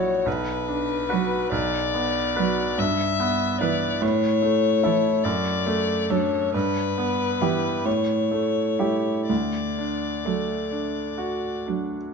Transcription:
Already playing: A#1 F#3 E4 F#4 C#5
0.26 B1 B4
0.68 D4
1.09 F#3 F#4 B4
1.51 B1 D5
1.94 B3
2.36 F#3 F#4 B4
2.78 G2 E5
3.20 B3
3.61 E3 E4 B4 D5
4.02 A2 C#5
4.42 A3
4.83 E3 E4 A4
5.23 F#2 D5
5.66 A3
6.10 F#3 D4 A4 C#5
6.54 G2 B4
6.98 B3
7.42 E3 E4 G4
7.85 A2 C#5
8.31 A3
8.79 G3 E4 G4
9.29 D2 D5
9.78 D4
10.25 F#3 A3
10.71 D4
11.18 F#4
11.67 F#3 D4

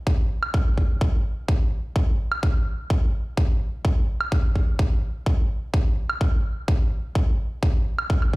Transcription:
0.07 kick
0.43 high woodblock
0.54 kick
0.78 kick
1.01 kick
1.48 kick
1.96 kick
2.32 high woodblock
2.43 kick
2.90 kick
3.37 kick
3.85 kick
4.21 high woodblock
4.32 kick
4.56 kick
4.79 kick
5.26 kick
5.74 kick
6.10 high woodblock
6.21 kick
6.68 kick
7.15 kick
7.63 kick
7.99 high woodblock
8.10 kick
8.22 high woodblock

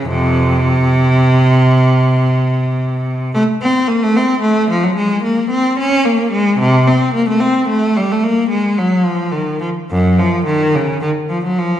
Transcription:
0.05 F2 C3
3.34 A3
3.62 C4
3.88 A#3
4.03 A3
4.16 C4
4.41 A3
4.70 F3
4.83 F#3
4.96 G#3
5.23 A#3
5.50 C4
5.79 C#4
6.05 A#3
6.32 G#3
6.59 C3
6.87 C4
7.14 A#3
7.29 A3
7.40 C4
7.69 A3
7.97 G3
8.12 A3
8.23 A#3
8.50 G#3
8.78 F#3
9.05 F3
9.32 D#3
9.60 F3
9.91 F#2
10.19 F3
10.45 D#3
10.75 C#3
11.02 D#3
11.29 F3
11.45 F#3
11.59 F3

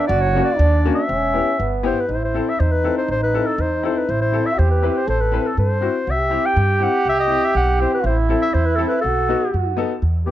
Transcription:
0.07 F#1 F#4 D5
0.21 C#5
0.35 A#3 C#4 F#4
0.45 D5
0.58 D#2 D4
0.85 A#3 C#4 F#4
0.95 E5
1.07 E1 C#4
1.34 B3 E4 G4
1.59 G1 B3
1.83 B3 E4 G4 C5
2.00 B4
2.08 A1 E4 C5
2.24 C5
2.34 C4 E4 A4
2.49 E5
2.59 E2 D#4 C5
2.71 B4
2.84 C4 E4 A4
2.98 C5
3.08 A1 C5
3.23 B4
3.34 C4 E4 A4
3.46 A4
3.58 E2 C5
3.83 C4 E4 A4 C5
3.97 B4
4.08 A1 E4 C5
4.22 C5
4.32 C4 E4 A4
4.46 E5
4.57 E2 G4 C5
4.71 B4
4.82 C4 E4 B4
4.97 C5
5.07 A1 A4 C5
5.20 B4
5.32 C4 E4 B4
5.46 A4
5.57 G2 C5
5.81 C4 E4 F#4
6.07 C2 G4 E5
6.30 C4 E4 G4
6.46 G5
6.56 G2
6.80 C4 E4 G4 F#5
7.05 C2 E5
7.20 D#5
7.27 C4 E4 G4
7.45 E5
7.55 B1 F#5
7.78 C4 E4 G4 C5
7.94 B4
8.04 A1 E4 C5
8.29 C4 E4 A4
8.42 E5
8.54 E2 C5
8.65 B4
8.75 C4 E4 A4
8.88 B4
9.01 B1 F#4 A4
9.29 B3 D#4 F#4
9.53 F#2 F#4
9.77 B3 D#4 A4
10.02 E2
10.26 B3 E4 G4

